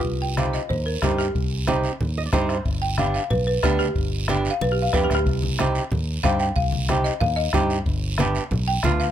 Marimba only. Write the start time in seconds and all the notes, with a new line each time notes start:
0.22 G5
0.37 F5
0.53 D#5
0.69 C5
0.86 A#4
1.02 G4
1.18 G4
2.82 G5
2.98 F5
3.14 F5
3.30 B4
3.47 B4
3.63 G4
3.79 G4
4.50 F5
4.62 B4
4.72 G4
4.82 F5
4.93 B4
5.04 G4
5.15 G4
6.23 F5
6.40 G5
6.56 F5
7.04 D#5
7.21 F5
7.36 D#5
8.68 G5
9.00 F5